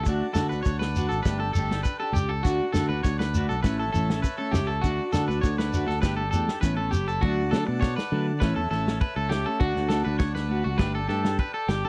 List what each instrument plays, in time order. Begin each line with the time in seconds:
Already playing: accordion A5
0.04 fingered electric bass D2, clean electric guitar A3, accordion D5, muted clean electric guitar stroke, kick, shekere
0.08 clean electric guitar D4 F#4, accordion F#5
0.34 fingered electric bass D3, clean electric guitar A3 F#4 A4, snare, shekere
0.49 fingered electric bass D2, clean electric guitar F#4 B4, shekere
0.55 clean electric guitar D4
0.63 fingered electric bass D2, clean electric guitar C#5, kick, shekere
0.79 clean electric guitar B4, snare
0.96 clean electric guitar D4 F#4, muted clean electric guitar stroke, shekere
1.09 fingered electric bass G#1, clean electric guitar A4, shekere
1.23 fingered electric bass G1, clean electric guitar A3 B4, accordion G5, kick, snare, shekere
1.27 clean electric guitar D4 G4
1.40 clean electric guitar A4
1.53 fingered electric bass G1, clean electric guitar A3 A4, shekere
1.58 clean electric guitar D4 G4
1.71 clean electric guitar D4 G4, snare
1.83 clean electric guitar B4, kick, shekere
2.00 clean electric guitar D4 G4 A4
2.13 fingered electric bass C#2, clean electric guitar G4, shekere
2.29 clean electric guitar A4
2.43 fingered electric bass D2, clean electric guitar A3 D4 F#4, accordion F#5, kick, shekere
2.73 fingered electric bass D3, clean electric guitar A3 D4 A4, snare, shekere
2.77 clean electric guitar F#4
2.89 fingered electric bass D2, clean electric guitar F#4 B4
2.93 clean electric guitar D4
3.03 fingered electric bass D2, clean electric guitar C#5, kick, snare, shekere
3.19 clean electric guitar B4, snare
3.34 clean electric guitar A3 D4 F#4, shekere
3.49 fingered electric bass B1, clean electric guitar A4, shekere
3.63 fingered electric bass A1, clean electric guitar E3 A3 C#4 B4, accordion C#5 E5 A5, kick, snare, shekere
3.79 clean electric guitar A4
3.92 fingered electric bass A1, clean electric guitar E3 A3 C#4 A4, shekere
4.09 clean electric guitar A3 C#4, snare, shekere
4.22 clean electric guitar B4, kick, shekere
4.38 clean electric guitar A3 C#4 A4
4.52 fingered electric bass C#2, clean electric guitar G4, snare, shekere
4.67 clean electric guitar A4
4.81 fingered electric bass D2, clean electric guitar A3 D4 F#4, accordion D5 F#5, kick, shekere
5.12 fingered electric bass D3, clean electric guitar A3 D4 F#4 A4, snare, shekere
5.28 fingered electric bass D2, clean electric guitar D4 F#4 B4, shekere
5.41 fingered electric bass D2, clean electric guitar C#5, kick, shekere
5.58 clean electric guitar B4, snare
5.72 clean electric guitar A3 D4 F#4, shekere
5.88 fingered electric bass D2, clean electric guitar A4, snare
6.02 fingered electric bass G1, clean electric guitar A3 D4 G4 B4, accordion G5, kick, snare, shekere
6.17 clean electric guitar A4
6.31 fingered electric bass E2, clean electric guitar A3 D4 G4 A4, shekere
6.47 clean electric guitar D4 G4, snare
6.61 fingered electric bass A1, clean electric guitar E3 B3 C#4 B4, accordion C#5 B5, kick, snare, shekere
6.77 clean electric guitar B3 C#4 A4
6.91 fingered electric bass F#1, clean electric guitar G4, shekere
7.08 clean electric guitar A4, shekere
7.21 fingered electric bass D2, clean electric guitar F#3 A3 D4 F#4, accordion D5 F#5, kick
7.25 accordion A5
7.51 fingered electric bass D3, clean electric guitar F#3 A3 D4 A4, snare
7.67 fingered electric bass B2, clean electric guitar A3 D4, muted clean electric guitar stroke
7.81 clean electric guitar C#5, kick, snare
7.96 clean electric guitar B4, snare
8.11 fingered electric bass D3, clean electric guitar F#3 A3 D4
8.40 fingered electric bass A1, clean electric guitar E3 A3 C#4 B4, accordion C#5 E5 A5, kick, snare
8.56 fingered electric bass E2, clean electric guitar A4
8.71 fingered electric bass A1, clean electric guitar E3 A3 C#4 A4, snare
8.87 clean electric guitar A3 C#4, snare
9.01 clean electric guitar B4, kick
9.16 fingered electric bass C#2, clean electric guitar A4
9.30 clean electric guitar G4, snare
9.46 clean electric guitar A3 C#4 A4
9.59 fingered electric bass D2, clean electric guitar A3 D4 F#4, accordion D5 F#5, kick
9.76 fingered electric bass D2, snare
9.89 clean electric guitar A3 D4 F#4 A4, snare
10.05 fingered electric bass D2, clean electric guitar D4 F#4 B4
10.19 clean electric guitar C#5, kick, snare
10.35 clean electric guitar B4, snare
10.49 clean electric guitar A3 F#4
10.64 fingered electric bass C#2, clean electric guitar F#4
10.78 fingered electric bass G1, clean electric guitar A3 D4 G4 B4, accordion G5, kick, snare
10.95 clean electric guitar A4
11.07 fingered electric bass G2, clean electric guitar A3 D4 G4 A4, snare
11.24 clean electric guitar D4 G4, snare
11.39 clean electric guitar B4, kick
11.54 clean electric guitar A4
11.68 fingered electric bass G1, clean electric guitar G4, snare
11.82 clean electric guitar D4 G4 A4